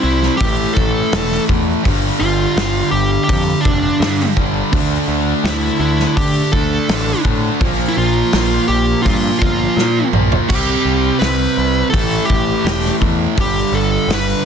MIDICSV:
0, 0, Header, 1, 6, 480
1, 0, Start_track
1, 0, Tempo, 720288
1, 1230, Time_signature, 4, 2, 24, 8
1, 9629, End_track
2, 0, Start_track
2, 0, Title_t, "Lead electric guitar"
2, 0, Program_c, 0, 29
2, 21, Note_on_c, 0, 64, 88
2, 244, Note_off_c, 0, 64, 0
2, 247, Note_on_c, 0, 67, 101
2, 481, Note_off_c, 0, 67, 0
2, 491, Note_on_c, 0, 69, 96
2, 954, Note_off_c, 0, 69, 0
2, 1464, Note_on_c, 0, 65, 96
2, 1938, Note_off_c, 0, 65, 0
2, 1941, Note_on_c, 0, 67, 108
2, 2151, Note_off_c, 0, 67, 0
2, 2159, Note_on_c, 0, 67, 102
2, 2397, Note_off_c, 0, 67, 0
2, 2403, Note_on_c, 0, 62, 88
2, 2870, Note_off_c, 0, 62, 0
2, 3633, Note_on_c, 0, 64, 84
2, 3863, Note_off_c, 0, 64, 0
2, 3871, Note_on_c, 0, 64, 84
2, 4107, Note_off_c, 0, 64, 0
2, 4110, Note_on_c, 0, 67, 89
2, 4334, Note_off_c, 0, 67, 0
2, 4346, Note_on_c, 0, 69, 94
2, 4802, Note_off_c, 0, 69, 0
2, 5254, Note_on_c, 0, 64, 73
2, 5306, Note_off_c, 0, 64, 0
2, 5316, Note_on_c, 0, 65, 92
2, 5779, Note_off_c, 0, 65, 0
2, 5782, Note_on_c, 0, 67, 115
2, 6011, Note_off_c, 0, 67, 0
2, 6014, Note_on_c, 0, 65, 95
2, 6245, Note_off_c, 0, 65, 0
2, 6256, Note_on_c, 0, 65, 87
2, 6718, Note_off_c, 0, 65, 0
2, 6991, Note_on_c, 0, 67, 100
2, 7446, Note_off_c, 0, 67, 0
2, 7457, Note_on_c, 0, 71, 99
2, 7926, Note_off_c, 0, 71, 0
2, 7928, Note_on_c, 0, 69, 92
2, 8163, Note_off_c, 0, 69, 0
2, 8164, Note_on_c, 0, 67, 83
2, 8633, Note_off_c, 0, 67, 0
2, 8935, Note_on_c, 0, 67, 110
2, 9161, Note_on_c, 0, 69, 99
2, 9172, Note_off_c, 0, 67, 0
2, 9405, Note_off_c, 0, 69, 0
2, 9418, Note_on_c, 0, 71, 100
2, 9629, Note_off_c, 0, 71, 0
2, 9629, End_track
3, 0, Start_track
3, 0, Title_t, "Distorted electric guitar"
3, 0, Program_c, 1, 30
3, 0, Note_on_c, 1, 48, 97
3, 0, Note_on_c, 1, 55, 113
3, 0, Note_on_c, 1, 60, 113
3, 253, Note_off_c, 1, 48, 0
3, 259, Note_off_c, 1, 55, 0
3, 265, Note_off_c, 1, 60, 0
3, 266, Note_on_c, 1, 45, 100
3, 279, Note_on_c, 1, 52, 98
3, 292, Note_on_c, 1, 57, 107
3, 1213, Note_off_c, 1, 45, 0
3, 1220, Note_off_c, 1, 52, 0
3, 1224, Note_on_c, 1, 43, 102
3, 1227, Note_off_c, 1, 57, 0
3, 1240, Note_on_c, 1, 50, 103
3, 1252, Note_on_c, 1, 55, 107
3, 2413, Note_off_c, 1, 43, 0
3, 2420, Note_off_c, 1, 50, 0
3, 2421, Note_off_c, 1, 55, 0
3, 2429, Note_on_c, 1, 55, 96
3, 2437, Note_on_c, 1, 50, 89
3, 2451, Note_on_c, 1, 43, 74
3, 2655, Note_off_c, 1, 55, 0
3, 2659, Note_off_c, 1, 50, 0
3, 2664, Note_off_c, 1, 43, 0
3, 2672, Note_on_c, 1, 43, 79
3, 2686, Note_on_c, 1, 50, 78
3, 2697, Note_on_c, 1, 55, 83
3, 3137, Note_off_c, 1, 43, 0
3, 3137, Note_off_c, 1, 50, 0
3, 3145, Note_on_c, 1, 50, 100
3, 3149, Note_off_c, 1, 55, 0
3, 3154, Note_on_c, 1, 57, 99
3, 3172, Note_on_c, 1, 62, 111
3, 4334, Note_off_c, 1, 50, 0
3, 4338, Note_off_c, 1, 57, 0
3, 4347, Note_off_c, 1, 62, 0
3, 4357, Note_on_c, 1, 62, 85
3, 4370, Note_on_c, 1, 57, 81
3, 4374, Note_on_c, 1, 50, 86
3, 4580, Note_off_c, 1, 62, 0
3, 4585, Note_off_c, 1, 50, 0
3, 4586, Note_off_c, 1, 57, 0
3, 4593, Note_on_c, 1, 50, 78
3, 4605, Note_on_c, 1, 57, 75
3, 4616, Note_on_c, 1, 62, 94
3, 5058, Note_off_c, 1, 50, 0
3, 5064, Note_off_c, 1, 57, 0
3, 5068, Note_on_c, 1, 46, 90
3, 5070, Note_off_c, 1, 62, 0
3, 5081, Note_on_c, 1, 53, 118
3, 5090, Note_on_c, 1, 58, 106
3, 6254, Note_off_c, 1, 58, 0
3, 6256, Note_off_c, 1, 46, 0
3, 6262, Note_off_c, 1, 53, 0
3, 6262, Note_on_c, 1, 58, 103
3, 6275, Note_on_c, 1, 53, 82
3, 6285, Note_on_c, 1, 46, 78
3, 6493, Note_off_c, 1, 58, 0
3, 6499, Note_off_c, 1, 53, 0
3, 6502, Note_off_c, 1, 46, 0
3, 6510, Note_on_c, 1, 46, 87
3, 6521, Note_on_c, 1, 53, 76
3, 6535, Note_on_c, 1, 58, 79
3, 6977, Note_off_c, 1, 46, 0
3, 6983, Note_off_c, 1, 53, 0
3, 6990, Note_off_c, 1, 58, 0
3, 6994, Note_on_c, 1, 48, 94
3, 7002, Note_on_c, 1, 55, 104
3, 7013, Note_on_c, 1, 60, 103
3, 7937, Note_off_c, 1, 48, 0
3, 7940, Note_on_c, 1, 45, 101
3, 7944, Note_off_c, 1, 55, 0
3, 7949, Note_off_c, 1, 60, 0
3, 7950, Note_on_c, 1, 52, 108
3, 7966, Note_on_c, 1, 57, 119
3, 8893, Note_off_c, 1, 45, 0
3, 8898, Note_off_c, 1, 52, 0
3, 8904, Note_on_c, 1, 43, 104
3, 8907, Note_off_c, 1, 57, 0
3, 8916, Note_on_c, 1, 50, 103
3, 8924, Note_on_c, 1, 55, 115
3, 9629, Note_off_c, 1, 43, 0
3, 9629, Note_off_c, 1, 50, 0
3, 9629, Note_off_c, 1, 55, 0
3, 9629, End_track
4, 0, Start_track
4, 0, Title_t, "Overdriven electric guitar"
4, 0, Program_c, 2, 29
4, 2910, Note_on_c, 2, 55, 83
4, 2924, Note_on_c, 2, 50, 74
4, 2934, Note_on_c, 2, 43, 71
4, 3132, Note_off_c, 2, 50, 0
4, 3136, Note_off_c, 2, 55, 0
4, 3148, Note_off_c, 2, 43, 0
4, 4821, Note_on_c, 2, 62, 82
4, 4834, Note_on_c, 2, 57, 73
4, 4850, Note_on_c, 2, 50, 70
4, 5052, Note_off_c, 2, 62, 0
4, 5058, Note_off_c, 2, 57, 0
4, 5066, Note_off_c, 2, 50, 0
4, 6755, Note_on_c, 2, 58, 85
4, 6767, Note_on_c, 2, 53, 71
4, 6781, Note_on_c, 2, 46, 61
4, 6979, Note_off_c, 2, 58, 0
4, 6986, Note_off_c, 2, 53, 0
4, 6987, Note_off_c, 2, 46, 0
4, 9629, End_track
5, 0, Start_track
5, 0, Title_t, "Picked electric bass"
5, 0, Program_c, 3, 34
5, 23, Note_on_c, 3, 36, 85
5, 188, Note_off_c, 3, 36, 0
5, 270, Note_on_c, 3, 33, 95
5, 432, Note_off_c, 3, 33, 0
5, 511, Note_on_c, 3, 33, 79
5, 673, Note_off_c, 3, 33, 0
5, 751, Note_on_c, 3, 28, 103
5, 913, Note_off_c, 3, 28, 0
5, 991, Note_on_c, 3, 40, 85
5, 1153, Note_off_c, 3, 40, 0
5, 1236, Note_on_c, 3, 31, 84
5, 1397, Note_off_c, 3, 31, 0
5, 1469, Note_on_c, 3, 31, 81
5, 1632, Note_off_c, 3, 31, 0
5, 1708, Note_on_c, 3, 31, 99
5, 1871, Note_off_c, 3, 31, 0
5, 1944, Note_on_c, 3, 31, 86
5, 2109, Note_off_c, 3, 31, 0
5, 2188, Note_on_c, 3, 41, 92
5, 2351, Note_off_c, 3, 41, 0
5, 2432, Note_on_c, 3, 29, 77
5, 2594, Note_off_c, 3, 29, 0
5, 2666, Note_on_c, 3, 43, 97
5, 2830, Note_off_c, 3, 43, 0
5, 2909, Note_on_c, 3, 31, 85
5, 3072, Note_off_c, 3, 31, 0
5, 3150, Note_on_c, 3, 38, 88
5, 3313, Note_off_c, 3, 38, 0
5, 3384, Note_on_c, 3, 38, 86
5, 3548, Note_off_c, 3, 38, 0
5, 3626, Note_on_c, 3, 38, 97
5, 3790, Note_off_c, 3, 38, 0
5, 3860, Note_on_c, 3, 38, 91
5, 4026, Note_off_c, 3, 38, 0
5, 4110, Note_on_c, 3, 50, 94
5, 4273, Note_off_c, 3, 50, 0
5, 4346, Note_on_c, 3, 38, 85
5, 4510, Note_off_c, 3, 38, 0
5, 4589, Note_on_c, 3, 33, 97
5, 4752, Note_off_c, 3, 33, 0
5, 4829, Note_on_c, 3, 45, 88
5, 4992, Note_off_c, 3, 45, 0
5, 5067, Note_on_c, 3, 34, 89
5, 5231, Note_off_c, 3, 34, 0
5, 5311, Note_on_c, 3, 34, 82
5, 5474, Note_off_c, 3, 34, 0
5, 5553, Note_on_c, 3, 34, 82
5, 5715, Note_off_c, 3, 34, 0
5, 5788, Note_on_c, 3, 34, 85
5, 5952, Note_off_c, 3, 34, 0
5, 6032, Note_on_c, 3, 43, 90
5, 6195, Note_off_c, 3, 43, 0
5, 6273, Note_on_c, 3, 31, 80
5, 6435, Note_off_c, 3, 31, 0
5, 6507, Note_on_c, 3, 46, 88
5, 6672, Note_off_c, 3, 46, 0
5, 6748, Note_on_c, 3, 34, 82
5, 6912, Note_off_c, 3, 34, 0
5, 6993, Note_on_c, 3, 36, 86
5, 7155, Note_off_c, 3, 36, 0
5, 7230, Note_on_c, 3, 36, 82
5, 7394, Note_off_c, 3, 36, 0
5, 7472, Note_on_c, 3, 36, 95
5, 7635, Note_off_c, 3, 36, 0
5, 7713, Note_on_c, 3, 36, 97
5, 7875, Note_off_c, 3, 36, 0
5, 7950, Note_on_c, 3, 33, 93
5, 8114, Note_off_c, 3, 33, 0
5, 8192, Note_on_c, 3, 33, 78
5, 8355, Note_off_c, 3, 33, 0
5, 8425, Note_on_c, 3, 28, 97
5, 8591, Note_off_c, 3, 28, 0
5, 8669, Note_on_c, 3, 40, 82
5, 8833, Note_off_c, 3, 40, 0
5, 8912, Note_on_c, 3, 31, 89
5, 9075, Note_off_c, 3, 31, 0
5, 9141, Note_on_c, 3, 31, 90
5, 9308, Note_off_c, 3, 31, 0
5, 9379, Note_on_c, 3, 31, 90
5, 9547, Note_off_c, 3, 31, 0
5, 9629, End_track
6, 0, Start_track
6, 0, Title_t, "Drums"
6, 151, Note_on_c, 9, 38, 35
6, 218, Note_off_c, 9, 38, 0
6, 269, Note_on_c, 9, 46, 64
6, 270, Note_on_c, 9, 36, 115
6, 335, Note_off_c, 9, 46, 0
6, 337, Note_off_c, 9, 36, 0
6, 511, Note_on_c, 9, 36, 101
6, 577, Note_off_c, 9, 36, 0
6, 751, Note_on_c, 9, 46, 70
6, 754, Note_on_c, 9, 38, 126
6, 818, Note_off_c, 9, 46, 0
6, 820, Note_off_c, 9, 38, 0
6, 878, Note_on_c, 9, 38, 34
6, 944, Note_off_c, 9, 38, 0
6, 994, Note_on_c, 9, 36, 91
6, 1060, Note_off_c, 9, 36, 0
6, 1235, Note_on_c, 9, 36, 116
6, 1239, Note_on_c, 9, 46, 72
6, 1302, Note_off_c, 9, 36, 0
6, 1306, Note_off_c, 9, 46, 0
6, 1714, Note_on_c, 9, 46, 57
6, 1717, Note_on_c, 9, 38, 111
6, 1781, Note_off_c, 9, 46, 0
6, 1784, Note_off_c, 9, 38, 0
6, 2194, Note_on_c, 9, 36, 102
6, 2196, Note_on_c, 9, 46, 59
6, 2261, Note_off_c, 9, 36, 0
6, 2262, Note_off_c, 9, 46, 0
6, 2434, Note_on_c, 9, 36, 96
6, 2501, Note_off_c, 9, 36, 0
6, 2679, Note_on_c, 9, 46, 60
6, 2682, Note_on_c, 9, 38, 126
6, 2746, Note_off_c, 9, 46, 0
6, 2749, Note_off_c, 9, 38, 0
6, 2798, Note_on_c, 9, 38, 34
6, 2864, Note_off_c, 9, 38, 0
6, 2911, Note_on_c, 9, 36, 86
6, 2978, Note_off_c, 9, 36, 0
6, 3151, Note_on_c, 9, 36, 125
6, 3155, Note_on_c, 9, 46, 68
6, 3218, Note_off_c, 9, 36, 0
6, 3222, Note_off_c, 9, 46, 0
6, 3633, Note_on_c, 9, 46, 55
6, 3636, Note_on_c, 9, 38, 113
6, 3700, Note_off_c, 9, 46, 0
6, 3702, Note_off_c, 9, 38, 0
6, 3994, Note_on_c, 9, 38, 34
6, 4061, Note_off_c, 9, 38, 0
6, 4112, Note_on_c, 9, 36, 123
6, 4113, Note_on_c, 9, 46, 69
6, 4178, Note_off_c, 9, 36, 0
6, 4180, Note_off_c, 9, 46, 0
6, 4350, Note_on_c, 9, 36, 96
6, 4417, Note_off_c, 9, 36, 0
6, 4593, Note_on_c, 9, 46, 69
6, 4595, Note_on_c, 9, 38, 120
6, 4659, Note_off_c, 9, 46, 0
6, 4662, Note_off_c, 9, 38, 0
6, 4831, Note_on_c, 9, 36, 87
6, 4897, Note_off_c, 9, 36, 0
6, 5069, Note_on_c, 9, 46, 70
6, 5071, Note_on_c, 9, 36, 126
6, 5135, Note_off_c, 9, 46, 0
6, 5137, Note_off_c, 9, 36, 0
6, 5550, Note_on_c, 9, 46, 61
6, 5553, Note_on_c, 9, 38, 102
6, 5617, Note_off_c, 9, 46, 0
6, 5620, Note_off_c, 9, 38, 0
6, 6036, Note_on_c, 9, 36, 108
6, 6038, Note_on_c, 9, 46, 60
6, 6103, Note_off_c, 9, 36, 0
6, 6105, Note_off_c, 9, 46, 0
6, 6275, Note_on_c, 9, 36, 95
6, 6342, Note_off_c, 9, 36, 0
6, 6519, Note_on_c, 9, 38, 69
6, 6586, Note_off_c, 9, 38, 0
6, 6753, Note_on_c, 9, 45, 91
6, 6819, Note_off_c, 9, 45, 0
6, 6877, Note_on_c, 9, 43, 94
6, 6944, Note_off_c, 9, 43, 0
6, 6997, Note_on_c, 9, 36, 120
6, 6998, Note_on_c, 9, 49, 114
6, 7064, Note_off_c, 9, 36, 0
6, 7064, Note_off_c, 9, 49, 0
6, 7474, Note_on_c, 9, 46, 59
6, 7476, Note_on_c, 9, 38, 99
6, 7540, Note_off_c, 9, 46, 0
6, 7543, Note_off_c, 9, 38, 0
6, 7955, Note_on_c, 9, 36, 108
6, 7956, Note_on_c, 9, 46, 68
6, 8021, Note_off_c, 9, 36, 0
6, 8022, Note_off_c, 9, 46, 0
6, 8196, Note_on_c, 9, 36, 92
6, 8262, Note_off_c, 9, 36, 0
6, 8440, Note_on_c, 9, 46, 66
6, 8442, Note_on_c, 9, 38, 122
6, 8506, Note_off_c, 9, 46, 0
6, 8509, Note_off_c, 9, 38, 0
6, 8563, Note_on_c, 9, 38, 37
6, 8629, Note_off_c, 9, 38, 0
6, 8674, Note_on_c, 9, 36, 84
6, 8741, Note_off_c, 9, 36, 0
6, 8914, Note_on_c, 9, 36, 120
6, 8921, Note_on_c, 9, 46, 70
6, 8981, Note_off_c, 9, 36, 0
6, 8988, Note_off_c, 9, 46, 0
6, 9398, Note_on_c, 9, 46, 64
6, 9401, Note_on_c, 9, 38, 105
6, 9465, Note_off_c, 9, 46, 0
6, 9467, Note_off_c, 9, 38, 0
6, 9629, End_track
0, 0, End_of_file